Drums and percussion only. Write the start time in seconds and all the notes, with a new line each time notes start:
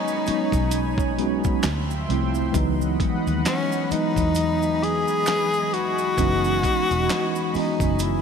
0.08 maracas
0.26 closed hi-hat, maracas
0.52 kick, closed hi-hat, maracas
0.71 closed hi-hat, maracas
0.98 kick, maracas
1.19 closed hi-hat
1.44 kick, maracas
1.63 finger snap, snare, clap, closed hi-hat, maracas
1.90 maracas
2.10 closed hi-hat
2.35 maracas
2.54 kick, closed hi-hat, maracas
2.81 maracas
3.00 kick, closed hi-hat
3.27 closed hi-hat, maracas
3.45 finger snap, snare, clap, closed hi-hat, maracas
3.72 maracas
3.91 closed hi-hat, maracas
4.16 kick, closed hi-hat, maracas
4.35 closed hi-hat, maracas
4.62 maracas
4.84 closed hi-hat
5.08 maracas
5.26 finger snap, snare, clap, closed hi-hat, maracas
5.53 maracas
5.74 closed hi-hat
5.98 maracas
6.18 kick, closed hi-hat, maracas
6.44 maracas
6.63 kick, snare, closed hi-hat, maracas
6.91 closed hi-hat, maracas
7.09 finger snap, snare, clap, closed hi-hat, maracas
7.36 maracas
7.54 open hi-hat, maracas
7.80 kick, closed hi-hat, maracas
7.99 closed hi-hat, maracas